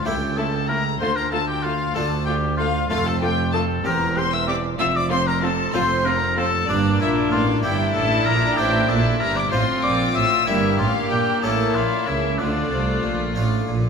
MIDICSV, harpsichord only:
0, 0, Header, 1, 2, 480
1, 0, Start_track
1, 0, Key_signature, -1, "minor"
1, 0, Tempo, 630915
1, 766, Time_signature, 6, 3, 24, 8
1, 7483, Tempo, 640342
1, 10525, End_track
2, 0, Start_track
2, 0, Title_t, "Harpsichord"
2, 0, Program_c, 0, 6
2, 41, Note_on_c, 0, 37, 49
2, 42, Note_on_c, 0, 57, 43
2, 45, Note_on_c, 0, 64, 39
2, 49, Note_on_c, 0, 69, 46
2, 662, Note_off_c, 0, 37, 0
2, 735, Note_off_c, 0, 57, 0
2, 737, Note_off_c, 0, 64, 0
2, 739, Note_off_c, 0, 69, 0
2, 766, Note_on_c, 0, 38, 56
2, 1387, Note_off_c, 0, 38, 0
2, 1488, Note_on_c, 0, 57, 43
2, 1489, Note_on_c, 0, 38, 55
2, 1492, Note_on_c, 0, 62, 47
2, 1495, Note_on_c, 0, 65, 52
2, 2007, Note_off_c, 0, 57, 0
2, 2010, Note_off_c, 0, 62, 0
2, 2012, Note_off_c, 0, 65, 0
2, 2107, Note_off_c, 0, 38, 0
2, 2208, Note_on_c, 0, 41, 58
2, 2210, Note_on_c, 0, 57, 47
2, 2213, Note_on_c, 0, 60, 46
2, 2219, Note_on_c, 0, 65, 44
2, 2825, Note_off_c, 0, 41, 0
2, 2898, Note_off_c, 0, 57, 0
2, 2899, Note_off_c, 0, 60, 0
2, 2902, Note_off_c, 0, 65, 0
2, 2927, Note_on_c, 0, 40, 60
2, 2931, Note_on_c, 0, 60, 51
2, 2937, Note_on_c, 0, 67, 46
2, 3542, Note_off_c, 0, 40, 0
2, 3616, Note_off_c, 0, 60, 0
2, 3619, Note_off_c, 0, 67, 0
2, 3645, Note_on_c, 0, 41, 63
2, 4262, Note_off_c, 0, 41, 0
2, 4364, Note_on_c, 0, 41, 62
2, 4364, Note_on_c, 0, 57, 50
2, 4366, Note_on_c, 0, 60, 51
2, 4370, Note_on_c, 0, 65, 55
2, 4883, Note_off_c, 0, 57, 0
2, 4884, Note_off_c, 0, 60, 0
2, 4887, Note_off_c, 0, 65, 0
2, 4982, Note_off_c, 0, 41, 0
2, 5083, Note_on_c, 0, 43, 65
2, 5087, Note_on_c, 0, 58, 53
2, 5092, Note_on_c, 0, 62, 52
2, 5300, Note_off_c, 0, 43, 0
2, 5326, Note_on_c, 0, 46, 70
2, 5542, Note_off_c, 0, 46, 0
2, 5562, Note_on_c, 0, 45, 74
2, 5777, Note_off_c, 0, 58, 0
2, 5779, Note_off_c, 0, 62, 0
2, 5780, Note_off_c, 0, 45, 0
2, 5804, Note_on_c, 0, 43, 60
2, 5804, Note_on_c, 0, 58, 55
2, 5808, Note_on_c, 0, 64, 48
2, 6021, Note_off_c, 0, 43, 0
2, 6044, Note_on_c, 0, 45, 66
2, 6260, Note_off_c, 0, 45, 0
2, 6284, Note_on_c, 0, 46, 74
2, 6494, Note_off_c, 0, 58, 0
2, 6496, Note_off_c, 0, 64, 0
2, 6500, Note_off_c, 0, 46, 0
2, 6523, Note_on_c, 0, 45, 63
2, 6525, Note_on_c, 0, 57, 52
2, 6530, Note_on_c, 0, 60, 52
2, 6533, Note_on_c, 0, 64, 53
2, 6740, Note_off_c, 0, 45, 0
2, 6760, Note_on_c, 0, 46, 75
2, 6979, Note_off_c, 0, 46, 0
2, 6999, Note_on_c, 0, 43, 73
2, 7215, Note_off_c, 0, 57, 0
2, 7218, Note_off_c, 0, 43, 0
2, 7218, Note_off_c, 0, 60, 0
2, 7219, Note_off_c, 0, 64, 0
2, 7240, Note_on_c, 0, 45, 62
2, 7241, Note_on_c, 0, 57, 44
2, 7243, Note_on_c, 0, 60, 52
2, 7250, Note_on_c, 0, 65, 49
2, 7459, Note_off_c, 0, 45, 0
2, 7477, Note_on_c, 0, 46, 65
2, 7695, Note_off_c, 0, 46, 0
2, 7718, Note_on_c, 0, 45, 64
2, 7930, Note_off_c, 0, 57, 0
2, 7931, Note_off_c, 0, 60, 0
2, 7934, Note_off_c, 0, 65, 0
2, 7935, Note_off_c, 0, 45, 0
2, 7956, Note_on_c, 0, 43, 63
2, 7956, Note_on_c, 0, 58, 50
2, 7961, Note_on_c, 0, 62, 51
2, 7965, Note_on_c, 0, 64, 50
2, 8174, Note_off_c, 0, 43, 0
2, 8197, Note_on_c, 0, 45, 70
2, 8414, Note_off_c, 0, 45, 0
2, 8435, Note_on_c, 0, 46, 63
2, 8646, Note_off_c, 0, 58, 0
2, 8649, Note_off_c, 0, 62, 0
2, 8650, Note_off_c, 0, 64, 0
2, 8652, Note_off_c, 0, 46, 0
2, 8675, Note_on_c, 0, 45, 58
2, 8677, Note_on_c, 0, 57, 45
2, 8681, Note_on_c, 0, 61, 44
2, 8685, Note_on_c, 0, 64, 43
2, 8893, Note_off_c, 0, 45, 0
2, 8914, Note_on_c, 0, 46, 58
2, 9133, Note_off_c, 0, 46, 0
2, 9155, Note_on_c, 0, 49, 64
2, 9370, Note_off_c, 0, 57, 0
2, 9372, Note_off_c, 0, 61, 0
2, 9374, Note_off_c, 0, 49, 0
2, 9374, Note_off_c, 0, 64, 0
2, 9399, Note_on_c, 0, 50, 59
2, 9617, Note_off_c, 0, 50, 0
2, 9639, Note_on_c, 0, 48, 58
2, 9858, Note_off_c, 0, 48, 0
2, 9879, Note_on_c, 0, 46, 63
2, 10098, Note_off_c, 0, 46, 0
2, 10120, Note_on_c, 0, 45, 54
2, 10121, Note_on_c, 0, 57, 40
2, 10124, Note_on_c, 0, 62, 44
2, 10126, Note_on_c, 0, 65, 49
2, 10297, Note_off_c, 0, 57, 0
2, 10340, Note_off_c, 0, 45, 0
2, 10361, Note_on_c, 0, 46, 58
2, 10525, Note_off_c, 0, 46, 0
2, 10525, Note_off_c, 0, 62, 0
2, 10525, Note_off_c, 0, 65, 0
2, 10525, End_track
0, 0, End_of_file